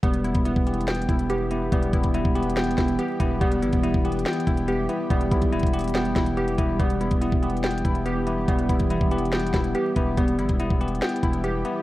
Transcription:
0.03 E1 E3 G3 B3 G4, kick, closed hi-hat
0.14 closed hi-hat
0.24 B3 E4, closed hi-hat
0.35 E1, kick, closed hi-hat
0.45 B3 E4, closed hi-hat
0.56 E1, kick
0.67 B3 G4, closed hi-hat
0.74 closed hi-hat
0.81 closed hi-hat
0.88 B3 G5, snare, closed hi-hat
0.95 closed hi-hat
1.02 closed hi-hat
1.09 E1 E4, kick, closed hi-hat
1.19 closed hi-hat
1.30 B3 G4, closed hi-hat
1.51 B3 E4, closed hi-hat
1.72 E1 G3 B3, kick, closed hi-hat
1.83 closed hi-hat
1.93 E1 B3 E4, kick, closed hi-hat
2.04 kick, closed hi-hat
2.14 B3 E4, closed hi-hat
2.25 E1, kick
2.35 B3 G4, closed hi-hat, open hi-hat
2.43 closed hi-hat
2.50 closed hi-hat
2.57 B3 G5, snare, closed hi-hat
2.64 closed hi-hat
2.71 closed hi-hat
2.78 E1 E4, kick, snare, closed hi-hat
2.88 closed hi-hat
2.99 B3 G4, closed hi-hat
3.20 E1 B3 E4, kick, closed hi-hat
3.41 E1 G3 B3, kick, closed hi-hat
3.52 closed hi-hat
3.62 G1 B3 E4, closed hi-hat
3.73 E1, kick, closed hi-hat
3.83 B3 E4, closed hi-hat
3.94 E1, kick
4.05 B3 G4, closed hi-hat
4.12 closed hi-hat
4.19 closed hi-hat
4.26 B3 G5, snare, closed hi-hat
4.33 closed hi-hat
4.40 closed hi-hat
4.47 E1 E4, kick, closed hi-hat
4.57 closed hi-hat
4.68 B3 G4, closed hi-hat
4.89 B3 E4, closed hi-hat
5.10 E1 G3 B3, kick, closed hi-hat
5.21 closed hi-hat
5.31 B1 B3 E4, kick, closed hi-hat
5.42 kick, closed hi-hat
5.52 D1 B3 E4, closed hi-hat
5.60 E1, kick, closed hi-hat
5.67 closed hi-hat
5.73 B3 G4, closed hi-hat, open hi-hat
5.79 closed hi-hat
5.81 closed hi-hat
5.84 closed hi-hat
5.88 closed hi-hat
5.90 closed hi-hat
5.95 B3 G5, snare, closed hi-hat
6.05 closed hi-hat
6.16 E1 E4, kick, snare, closed hi-hat
6.26 closed hi-hat
6.37 B3 G4, closed hi-hat
6.48 closed hi-hat
6.58 E1 B3 E4, kick, closed hi-hat
6.79 E1 E3 G3 B3, kick, closed hi-hat
6.90 closed hi-hat
7.00 B3 E4, closed hi-hat
7.11 E1, kick, closed hi-hat
7.21 B3 E4, closed hi-hat
7.32 E1, kick
7.43 B3 G4, closed hi-hat
7.50 closed hi-hat
7.57 closed hi-hat
7.64 B3 G5, snare, closed hi-hat
7.71 closed hi-hat
7.78 closed hi-hat
7.85 E1 E4, kick, closed hi-hat
7.95 closed hi-hat
8.06 B3 G4, closed hi-hat
8.27 B3 E4, closed hi-hat
8.48 E1 G3 B3, kick, closed hi-hat
8.59 closed hi-hat
8.69 E1 B3 E4, kick, closed hi-hat
8.80 kick, closed hi-hat
8.90 B3 E4, closed hi-hat
9.01 E1, kick
9.11 B3 G4, closed hi-hat, open hi-hat
9.19 closed hi-hat
9.26 closed hi-hat
9.33 B3 G5, snare, closed hi-hat
9.40 closed hi-hat
9.47 closed hi-hat
9.54 E1 E4, kick, snare, closed hi-hat
9.64 closed hi-hat
9.75 B3 G4, closed hi-hat
9.96 E1 B3 E4, kick, closed hi-hat
10.17 E1 E3 G3 B3 G4, kick, closed hi-hat
10.28 closed hi-hat
10.38 G1 B3 E4, closed hi-hat
10.49 E1, kick, closed hi-hat
10.59 B3 E4, closed hi-hat
10.70 E1, kick
10.81 B3 G4, closed hi-hat
10.88 closed hi-hat
10.95 closed hi-hat
11.02 B3 G5, snare, closed hi-hat
11.09 closed hi-hat
11.16 closed hi-hat
11.23 E1 E4, kick, closed hi-hat
11.33 closed hi-hat
11.44 B3 G4, closed hi-hat
11.65 B3 E4, closed hi-hat

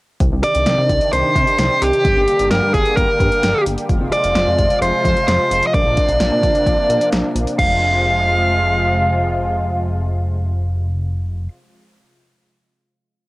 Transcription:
0.20 C2 C3 D#3 D4 G4, kick, closed hi-hat
0.32 C2
0.43 D5, closed hi-hat
0.55 C2, closed hi-hat
0.66 C2, snare, closed hi-hat
0.78 C3
0.89 C2, kick, closed hi-hat
1.01 closed hi-hat
1.13 C2 C5, closed hi-hat
1.36 C3, kick, closed hi-hat
1.47 closed hi-hat
1.58 C2 C5, snare, closed hi-hat
1.82 C2 G4, closed hi-hat
1.93 closed hi-hat
2.05 G1 D3 G3 A#3, kick, closed hi-hat
2.17 G1
2.28 closed hi-hat
2.39 G1, closed hi-hat
2.51 G1 A#4, snare, closed hi-hat
2.63 G2
2.74 G1 G#4, kick, closed hi-hat
2.86 closed hi-hat
2.97 G1 A#4, kick, closed hi-hat
3.20 G2, kick, closed hi-hat
3.32 closed hi-hat
3.43 G1, snare, closed hi-hat
3.66 G1, closed hi-hat
3.78 closed hi-hat
3.89 F1 C3 F3 G#3 F4, kick, closed hi-hat
4.01 F1
4.12 D5, closed hi-hat
4.24 F1, closed hi-hat
4.35 F1, snare, closed hi-hat
4.47 F2
4.59 F1, kick, closed hi-hat
4.70 closed hi-hat
4.82 F1 C5, closed hi-hat
5.05 F2, kick, closed hi-hat
5.17 closed hi-hat
5.28 F1 C5, snare, closed hi-hat
5.51 F1, closed hi-hat
5.63 closed hi-hat
5.67 D#5
5.74 A#1 C3 A#3 D4 D5, kick, closed hi-hat
5.86 A#1
5.97 kick, closed hi-hat
6.09 A#1, closed hi-hat
6.20 A#1, snare, closed hi-hat
6.32 A#2
6.43 A#1, kick, closed hi-hat
6.55 closed hi-hat
6.66 A#1, kick, closed hi-hat
6.89 A#2, closed hi-hat
7.01 closed hi-hat
7.12 A#1, snare, closed hi-hat
7.35 A#1, closed hi-hat
7.47 closed hi-hat
7.59 F1 C3 F3 G#3 F4 F5, kick, crash

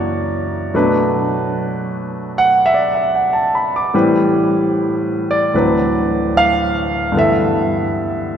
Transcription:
Already playing: F#2 E3 A#3 D4 F#4 C#5 D5
0.74 B2 F#3 A3 D4 B4
2.38 F#5
2.66 E5
2.74 D5
2.94 E5
3.15 F#5
3.33 A5
3.55 B5
3.76 D6
3.94 A2 E3 G3 C4 B4
5.31 D5
5.54 D2 A2 E3 F#3 C4 B4
6.37 F5
7.12 G2 D3 E3 B3
7.17 A4 E5

